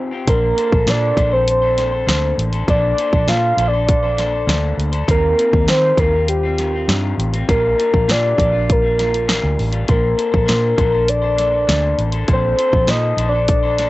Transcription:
Already playing: D#3 C4 F4 G4
0.11 C4 F4 G4
0.27 A#1 A#3 D4 A#4 C5, kick, closed hi-hat
0.56 A#3 D4 A4 C5, closed hi-hat
0.72 A#1 D4 A4 C5, kick
0.87 A#2 A#3 D4 A4 C5 D5, snare, closed hi-hat
1.16 A#1 A#3 D4 A4 C5, kick, closed hi-hat
1.31 D4 A4 C5
1.48 C5, closed hi-hat
1.62 D4 A4 C5
1.77 A#3 D4 A4 C5, snare, closed hi-hat
1.92 D4 A4 C5
2.06 D2 A#3 D4 A4 C5, snare, closed hi-hat
2.38 A1, closed hi-hat
2.52 D4 A4 C5, closed hi-hat
2.67 A#1 A#3 D4 A4 C5 D5, kick, closed hi-hat
2.97 A#3 D4 A4 C5, closed hi-hat
3.13 A#1 D4 A4 C5, kick
3.27 A#2 A#3 D4 A4 C5 F5, snare, closed hi-hat
3.57 A#1 A#3 D4 A4 C5, closed hi-hat
3.68 D5
3.73 D4 A4 C5
3.86 D5, kick, closed hi-hat
4.03 D4 A4 C5
4.17 A#3 D4 A4 C5, snare, closed hi-hat
4.32 D4 A4 C5
4.47 D2 A#3 D4 A4 C5, snare, closed hi-hat
4.78 D2, closed hi-hat
4.92 D4 A4 C5, closed hi-hat
5.07 D#2 D#3 G3 C4 F4 A#4, kick, closed hi-hat
5.37 D#3 G3 C4 F4, closed hi-hat
5.52 D#2 G3 C4 F4, kick
5.66 D#3 G3 C4 F4 C5, snare, closed hi-hat
5.97 D#2 D#3 G3 C4 F4 A#4, kick, closed hi-hat
6.13 G3 C4 F4
6.28 G4, closed hi-hat
6.43 G3 C4 F4
6.58 D#3 G3 C4 F4, snare, closed hi-hat
6.73 G3 C4 F4
6.88 G2 D#3 G3 C4 F4, snare, closed hi-hat
7.18 A1, closed hi-hat
7.33 G3 C4 F4, closed hi-hat
7.48 A#1 A#2 G3 D4 F4 A#4, kick, closed hi-hat
7.77 A#2 G3 D4 F4, closed hi-hat
7.92 A#1 G3 D4 F4, kick
8.07 A#2 G3 D4 F4 D5, snare, closed hi-hat
8.36 A#1 A#2 G3 D4 F4, kick, closed hi-hat
8.51 G3 D4 F4
8.70 A#4, kick, closed hi-hat
8.82 G3 D4 F4
8.97 A#2 G3 D4 F4, snare, closed hi-hat
9.13 G3 D4 F4, closed hi-hat
9.26 A#2 G3 D4 F4, snare, closed hi-hat
9.43 D2
9.59 A1, open hi-hat
9.72 G3 D4 F4, closed hi-hat
9.87 A#1 A#3 D4 A#4 C5, kick, closed hi-hat
10.17 A#3 D4 A4 C5, closed hi-hat
10.32 A#1 D4 A4 C5, kick
10.46 A#2 A#3 D4 C5, snare, closed hi-hat
10.76 A#1 A#3 D4 A4 C5, kick, closed hi-hat
10.92 D4 A4 C5
11.08 D5, closed hi-hat
11.22 D4 A4 C5
11.36 A#3 D4 A4 C5, snare, closed hi-hat
11.52 D4 A4 C5
11.67 D2 A#3 D4 A4 C5, snare, closed hi-hat
11.98 A1, closed hi-hat
12.12 D4 A4 C5, closed hi-hat
12.27 A#1 A#3 D4 A4 C5, kick, closed hi-hat
12.33 C5
12.56 A#3 D4 A4 C5, closed hi-hat
12.72 A#1 D4 A4 C5, kick
12.87 A#2 A#3 A4 C5 D#5, snare, closed hi-hat
13.17 A#1 A#3 D4 A4 C5, closed hi-hat
13.29 C5 D5
13.33 D4 A4
13.48 D5, kick, closed hi-hat
13.63 D4 A4 C5
13.78 A#3 D4 A4 C5, snare, closed hi-hat

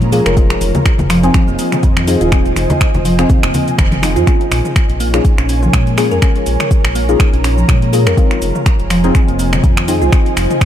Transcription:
Already playing: A#2 A#3 C#4 F4 G#4 A#4 C#5 A#5
0.01 closed hi-hat, muted conga, high conga, shaker
0.12 A#3 C#4 F4 G#4, open hi-hat, high conga, shaker
0.26 F1 A#4, finger snap, closed hi-hat, shaker
0.37 C4 D#4 F4 G#4 C5 D#5 G#5, kick, closed hi-hat, muted conga, shaker
0.50 finger snap, shaker
0.61 F1, open hi-hat, high conga, shaker
0.75 closed hi-hat, mid tom, muted conga, low conga, shaker
0.86 finger snap, kick, closed hi-hat, shaker
0.98 F1, closed hi-hat, high conga, low conga, shaker
1.10 F3, finger snap, open hi-hat, muted conga, shaker
1.23 C4 D#4 F4 G#4, closed hi-hat, shaker
1.34 finger snap, kick, closed hi-hat, high conga, shaker
1.48 F1 A#3, shaker
1.59 A#3, open hi-hat, muted conga, shaker
1.72 C3, finger snap, closed hi-hat, mid tom, shaker
1.83 F2 D#3, kick, closed hi-hat, shaker
1.96 finger snap, closed hi-hat, muted conga, high conga, shaker
2.08 C4 D#4 F4 G#4, open hi-hat, shaker
2.21 D#1 F4, closed hi-hat, shaker
2.32 C4 D#4 F4 G#4, finger snap, kick, closed hi-hat, muted conga, shaker
2.46 closed hi-hat, high conga, shaker
2.56 F1, finger snap, open hi-hat, high conga, shaker
2.70 closed hi-hat, mid tom, muted conga, low conga, shaker
2.81 finger snap, kick, closed hi-hat, shaker
2.94 F1, closed hi-hat, high conga, low conga, shaker
3.05 F3, open hi-hat, muted conga, shaker
3.19 C4 D#4 F4 G#4, finger snap, closed hi-hat, shaker
3.30 kick, closed hi-hat, low conga, shaker
3.43 F1 A#3, finger snap, high conga, shaker
3.54 A#3, open hi-hat, muted conga, low conga, shaker
3.68 C3, closed hi-hat, shaker
3.78 F1 D#3, finger snap, kick, closed hi-hat, mid tom, shaker
3.92 closed hi-hat, mid tom, muted conga, high conga, shaker
4.03 C4 D#4 F4 G#4, finger snap, open hi-hat, high conga, shaker
4.16 F2 F4, closed hi-hat, shaker
4.27 A#3 C#4 F4 G#4 A#4 C#5 G#5, finger snap, kick, closed hi-hat, shaker
4.41 closed hi-hat
4.51 A#1, finger snap, open hi-hat, shaker
4.65 mid tom, shaker
4.76 finger snap, kick, closed hi-hat, shaker
4.89 A#1, closed hi-hat
5.00 A#3, open hi-hat, shaker
5.14 A#3 C#4 D#4 F4 G#4, finger snap, closed hi-hat, shaker
5.25 kick, closed hi-hat, shaker
5.38 A#1 C#4, finger snap, closed hi-hat
5.49 C#4, open hi-hat, shaker
5.63 F3, mid tom, shaker
5.73 A#2 G#3, finger snap, kick, closed hi-hat, shaker
5.87 closed hi-hat
5.98 A#3 C#4 F4 G#4, finger snap, open hi-hat, shaker
6.11 F2 A#4, shaker
6.22 A#3 C#4 F4 G#4 A#5, finger snap, kick, closed hi-hat, shaker
6.36 closed hi-hat
6.46 A#1, open hi-hat, shaker
6.60 finger snap, mid tom, shaker
6.71 kick, closed hi-hat, shaker
6.84 A#1, finger snap, closed hi-hat
6.95 A#3, open hi-hat, shaker
7.09 A#3 C#4 D#4 F4 G#4, closed hi-hat, shaker
7.20 finger snap, kick, closed hi-hat, shaker
7.33 A#1 C#4, closed hi-hat
7.44 C#4, finger snap, open hi-hat, shaker
7.58 F3, shaker
7.68 A#2 G#3, finger snap, kick, closed hi-hat, mid tom, shaker
7.82 closed hi-hat
7.93 A#3 C#4 F4 G#4, open hi-hat, shaker
8.06 F2 A#4, finger snap, shaker
8.17 C4 D#4 F4 G#4 C5 D#5 G#5, kick, closed hi-hat, shaker
8.31 finger snap, closed hi-hat
8.42 F1, open hi-hat, shaker
8.55 mid tom, shaker
8.66 finger snap, kick, closed hi-hat, shaker
8.80 F1, closed hi-hat
8.90 F3, finger snap, open hi-hat, shaker
9.04 C4 D#4 F4 G#4, closed hi-hat, shaker
9.15 finger snap, kick, closed hi-hat, shaker
9.28 F1 A#3, closed hi-hat
9.39 A#3, open hi-hat, shaker
9.53 C3, finger snap, mid tom, shaker
9.64 F2 D#3, kick, closed hi-hat, shaker
9.77 finger snap, closed hi-hat
9.88 C4 D#4 F4 G#4, open hi-hat, shaker
10.01 C2 F4, shaker
10.12 C4 D#4 F4 G#4, finger snap, kick, closed hi-hat, shaker
10.26 closed hi-hat
10.36 F1, finger snap, open hi-hat, shaker
10.51 closed hi-hat, mid tom, shaker
10.61 finger snap, kick, closed hi-hat, shaker

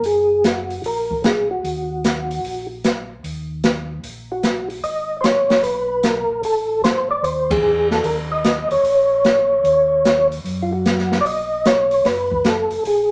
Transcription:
0.02 F#1 G#4, open hi-hat
0.44 F#4, snare, closed hi-hat
0.70 open hi-hat
0.83 A#1 A#4, open hi-hat
1.11 kick
1.24 G#4, snare, closed hi-hat
1.51 F#4
1.63 D#2, open hi-hat
2.04 snare, closed hi-hat
2.31 open hi-hat
2.43 A#1, open hi-hat
2.84 snare, closed hi-hat
3.23 D#2, open hi-hat
3.64 snare, closed hi-hat
4.03 A#1, open hi-hat
4.32 F#4
4.43 snare, closed hi-hat
4.70 open hi-hat
4.83 G#1 D#5, open hi-hat
5.21 C5, snare, closed hi-hat
5.25 C#5
5.50 snare, open hi-hat
5.63 B1 B4, open hi-hat
6.03 A#4, snare, closed hi-hat
6.29 A#1
6.42 A1 A4, open hi-hat
6.82 G#1 C5, snare, closed hi-hat
7.11 D5
7.22 D#2 C5, open hi-hat
7.51 G#4, kick, ride
7.63 E2
7.91 A4, snare
8.03 D#2 A#4, open hi-hat
8.32 D#5
8.44 snare, closed hi-hat
8.70 D#2 C#5, open hi-hat
8.83 A#1, open hi-hat
9.25 snare, closed hi-hat
9.63 D#2, open hi-hat
10.05 snare, closed hi-hat
10.32 open hi-hat
10.44 F#2, open hi-hat
10.62 F4
10.73 F#4
10.86 snare, closed hi-hat
10.99 snare
11.12 snare
11.21 B1 D5
11.26 D#5, open hi-hat
11.65 C#5, snare, closed hi-hat
11.91 open hi-hat
12.04 F#1 B4, snare, open hi-hat
12.31 kick
12.45 A4, snare, closed hi-hat
12.70 F#1, open hi-hat
12.85 A#1 G#4, open hi-hat

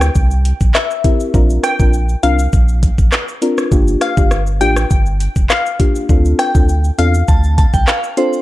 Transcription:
Already playing: D2
0.01 cross-stick, shaker
0.15 C2, kick, shaker
0.31 shaker
0.45 closed hi-hat, shaker
0.61 A#1, kick, shaker
0.75 E5, cross-stick, clap, shaker
0.91 shaker
1.04 C4 E4 G4 A#4, kick, closed hi-hat, shaker
1.20 shaker
1.34 A#1 C4 D4 F4 A#4, kick, shaker
1.50 shaker
1.63 G5, cross-stick, closed hi-hat, shaker
1.79 A#1 C4 D4 F4 A#4, kick, shaker
1.93 shaker
2.09 shaker
2.23 C2 C4 D4 F4 A#4 F5, closed hi-hat, shaker
2.39 shaker
2.53 A#1, kick, shaker
2.68 shaker
2.83 kick, closed hi-hat, shaker
2.98 A1, kick, shaker
3.12 cross-stick, clap, shaker
3.28 shaker
3.42 C4 D4 F4 A#4, closed hi-hat, shaker
3.58 cross-stick, shaker
3.71 G1 A#3 D4 F4 G4, kick, shaker
3.88 shaker
4.01 F5, cross-stick, closed hi-hat, shaker
4.17 G1 A#3 D4 F4 G4, kick, shaker
4.31 cross-stick, shaker
4.47 shaker
4.60 A1 A#3 D4 F4 G4 G5, closed hi-hat, shaker
4.76 cross-stick, shaker
4.90 G1, kick, shaker
5.06 shaker
5.20 closed hi-hat, shaker
5.36 F1, kick, shaker
5.50 F5, cross-stick, clap, shaker
5.66 shaker
5.79 A#3 D4 F4 G4, kick, closed hi-hat, shaker
5.95 shaker
6.09 D2 C4 D4 F4 A4, kick, shaker
6.25 shaker
6.39 G5, cross-stick, closed hi-hat, shaker
6.54 D2 C4 D4 F4 A4, kick, shaker
6.69 shaker
6.84 shaker
6.98 E2 C4 D4 F4 A4 F5, closed hi-hat, shaker
7.14 shaker
7.28 D2 A5, kick, shaker
7.44 shaker
7.58 A5, kick, closed hi-hat, shaker
7.74 C2 G5, kick, shaker
7.88 F5, cross-stick, clap, shaker
8.04 shaker
8.17 C4 D4 F4 A4 C5, closed hi-hat, shaker
8.33 shaker

